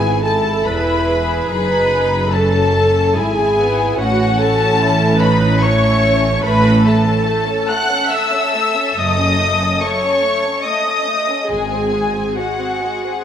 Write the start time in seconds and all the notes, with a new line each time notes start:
Already playing: G#1 G#2 B3 E4 G#4 G#5
0.24 E4 A4 A5
0.65 E1 E2 G#4 B4 B5
1.50 F#1 F#2 D#4 B4 B5
2.33 C#4 A4 A5
3.16 G#1 G#2 E4 G#4 G#5
3.58 B3
3.98 A1 A2 C#4 F#4 F#5
4.40 A4 A5
4.80 E4
5.20 D#4 B4 B5
5.60 A3 C#4 C#5 C#6
6.44 A1 A2 A3 A4 B4 B5
6.64 C#4
6.85 A3 A4 A5
7.06 C#4
7.26 A3
7.47 C#4
7.68 A3 F#5 F#6
7.89 C#4
8.11 A3 E5 E6
8.33 C#4
8.54 A3
8.75 C#4
8.96 F#1 F#2 A3 D#5 D#6
9.18 C#4
9.39 A3
9.61 C#4
9.81 A3 C#5 C#6
10.03 C#4
10.24 A3
10.46 C#4
10.65 A3 D#5 D#6
10.87 C#4
11.07 A3
11.29 C#4
11.49 G#1 G#2 G#3 G#4 G#5
11.72 C4
11.93 G#3
12.15 C4
12.37 G#3 F#4 F#5
12.59 C4
12.82 G#3
13.05 C4